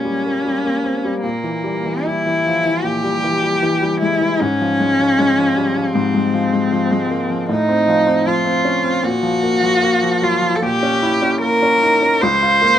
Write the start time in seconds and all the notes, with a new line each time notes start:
Already playing: A#2 G3 G#3 A#3 C#4
0.05 G3
0.26 A#3
0.45 G3
0.65 A#3
0.84 C4
1.05 G3
1.23 A#2 A#3
1.44 E3
1.64 G3
1.85 E3
2.05 G3 E4
2.26 E3
2.46 F3
2.65 E3
2.84 A#2 G4
3.04 G3
3.24 E3
3.43 G3
3.62 E3
3.82 G3
4.01 G#3 E4
4.21 E3
4.40 G#2 C#4
4.61 F3
4.80 G#3
4.99 F3
5.19 G#3
5.38 F3
5.57 G3
5.76 F3
5.95 G#2 C4
6.14 G#3
6.34 F3
6.53 G#3
6.72 F3
6.91 G#3
7.10 A#3
7.30 F3
7.49 A2 D#4
7.69 C4
7.88 F3
8.07 C4
8.26 F3 F4
8.45 C4
8.65 C#4
8.84 C4
9.03 A#2 F#4
9.23 F3
9.43 A#3
9.62 F3
9.82 A#3
10.03 F3
10.22 F#3 F4
10.42 F3
10.56 A4
10.62 A#2 G4
10.83 C#4
11.02 E4
11.22 C#4
11.42 A#3 A#4
11.63 C#4
11.83 D#4
12.02 C#4
12.22 C#2 C5
12.42 F4
12.62 A#3